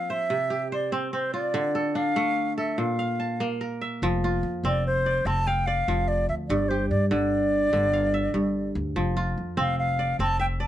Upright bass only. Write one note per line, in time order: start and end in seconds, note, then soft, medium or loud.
4.02 4.40 F1 medium
4.43 4.62 F2 medium
4.63 5.22 F1 medium
5.25 5.83 F1 medium
5.88 6.25 F1 medium
6.29 6.47 D2 medium
6.49 6.87 G1 medium
6.91 7.09 G2 medium
7.12 7.69 G1 medium
7.73 8.31 G1 medium
8.34 8.72 G1 medium
8.75 8.94 D2 medium
8.96 9.33 F1 medium
9.37 9.56 F2 medium
9.58 10.15 F1 medium
10.19 10.67 F1 medium